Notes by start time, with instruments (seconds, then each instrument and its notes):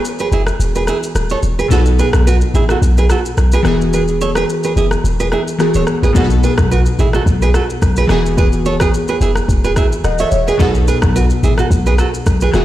Already playing: synth keys E3 B3 F#4 G#4
0.05 shaker
0.19 nylon-string guitar G#4 B4, shaker
0.32 808-style bass F#1, nylon-string guitar E4 G#4, shaker
0.47 cross-stick, shaker
0.60 808-style bass E1, shaker
0.75 nylon-string guitar G#4 B4, shaker
0.87 nylon-string guitar E4 G#4, cross-stick, shaker
1.03 shaker
1.15 808-style bass D#1, cross-stick, shaker
1.30 nylon-string guitar A4 C#5, shaker
1.43 808-style bass E1, shaker
1.59 nylon-string guitar G#4 B4, shaker
1.68 808-style bass B1, synth keys B2 B3 D#4, nylon-string guitar F#4 A4, shaker
1.73 synth keys A4
1.86 shaker
1.99 nylon-string guitar G#4 B4, shaker
2.13 808-style bass B1, cross-stick, shaker
2.27 nylon-string guitar F#4 B4, shaker
2.41 shaker
2.54 808-style bass A1, nylon-string guitar E4 G#4, shaker
2.69 nylon-string guitar F#4 A4, cross-stick, shaker
2.82 808-style bass B1, shaker
2.98 nylon-string guitar G#4 B4, shaker
3.10 nylon-string guitar F#4 A4, cross-stick, shaker
3.25 shaker
3.37 808-style bass B1, cross-stick, shaker
3.52 nylon-string guitar G#4 B4, shaker
3.63 808-style bass E1, synth keys E3 B3 F#4, nylon-string guitar G#4, cross-stick, shaker
3.67 nylon-string guitar E4, synth keys G#4
3.81 shaker
3.93 nylon-string guitar G#4 B4, shaker
4.08 shaker
4.21 nylon-string guitar A4 C#5, shaker
4.35 nylon-string guitar G#4 B4, cross-stick, shaker
4.50 shaker
4.63 nylon-string guitar G#4 B4, shaker
4.76 808-style bass F#1, nylon-string guitar E4 G#4, shaker
4.91 cross-stick, shaker
5.04 808-style bass E1, shaker
5.20 nylon-string guitar G#4 B4, shaker
5.32 nylon-string guitar E4 G#4, cross-stick
5.48 shaker
5.58 synth keys E3 B3 F#4 G#4, cross-stick, shaker
5.74 808-style bass D#1, nylon-string guitar A4 C#5, shaker
5.87 cross-stick, shaker
6.03 808-style bass A1, nylon-string guitar G#4 B4, shaker
6.13 808-style bass B1, synth keys B2 B3 D#4, nylon-string guitar F#4 A4, kick, shaker
6.18 synth keys G#4
6.24 synth keys A4
6.30 shaker
6.43 nylon-string guitar G#4 B4, shaker
6.58 808-style bass B1, kick, cross-stick, shaker
6.71 nylon-string guitar F#4 B4, shaker
6.86 shaker
6.99 808-style bass A1, nylon-string guitar E4 G#4, shaker
7.13 nylon-string guitar F#4 A4, cross-stick, shaker
7.26 808-style bass B1, kick, shaker
7.42 nylon-string guitar G#4 B4, shaker
7.54 nylon-string guitar F#4 A4, cross-stick, shaker
7.70 shaker
7.82 808-style bass B1, kick, cross-stick, shaker
7.96 nylon-string guitar G#4 B4, shaker
8.07 808-style bass E1, synth keys E3 B3 F#4, nylon-string guitar G#4, cross-stick, shaker
8.11 nylon-string guitar E4, synth keys G#4
8.26 shaker
8.37 nylon-string guitar G#4 B4, kick, shaker
8.52 shaker
8.66 nylon-string guitar A4 C#5, shaker
8.80 nylon-string guitar G#4 B4, kick, cross-stick, shaker
8.94 shaker
9.08 nylon-string guitar G#4 B4, shaker
9.21 808-style bass F#1, nylon-string guitar E4 G#4, shaker
9.36 cross-stick, shaker
9.48 808-style bass E1, kick, shaker
9.64 nylon-string guitar G#4 B4, shaker
9.76 nylon-string guitar E4 G#4, kick, cross-stick, shaker
9.92 shaker
10.04 808-style bass D#1, synth keys D#5 F#5, cross-stick, shaker
10.18 nylon-string guitar A4 C#5, synth keys C#5 E5, shaker
10.32 808-style bass E1, synth keys C#5, shaker
10.47 synth keys G#4 B4, nylon-string guitar G#4 B4, shaker
10.57 808-style bass B1, synth keys B2 B3 D#4, nylon-string guitar F#4 A4, kick, shaker
10.62 synth keys A4
10.75 shaker
10.88 nylon-string guitar G#4 B4, shaker
11.02 808-style bass B1, kick, cross-stick, shaker
11.16 nylon-string guitar F#4 B4, shaker
11.30 shaker
11.43 808-style bass A1, nylon-string guitar E4 G#4, shaker
11.58 nylon-string guitar F#4 A4, cross-stick, shaker
11.71 808-style bass B1, kick, shaker
11.86 nylon-string guitar G#4 B4, shaker
11.98 nylon-string guitar F#4 A4, cross-stick, shaker
12.14 shaker
12.26 808-style bass B1, kick, cross-stick, shaker
12.41 nylon-string guitar G#4 B4, shaker
12.52 808-style bass E1, synth keys E3 B3 F#4, nylon-string guitar E4 G#4, cross-stick, shaker
12.57 synth keys G#4